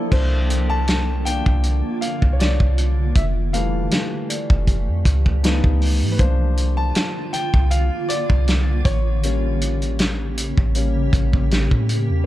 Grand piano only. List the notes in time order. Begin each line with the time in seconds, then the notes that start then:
Already playing: A#3 D4 E4 F4 A4 C5 D5 F5
0.11 F3 A#3 D4 C5
0.70 A5
1.25 F3 A#3 D4 G5
2.01 F5
2.33 C#5
2.39 D5
3.15 E5
3.53 E3 G3 A3 F5
5.43 F3 B3 D#4
6.12 B4
6.19 F3 A#3 D4 C5
6.77 A5
7.33 G5
7.71 F5
8.09 D5
8.85 C#5
9.23 G3 A#3 C#4
10.75 G3 A#3 C#4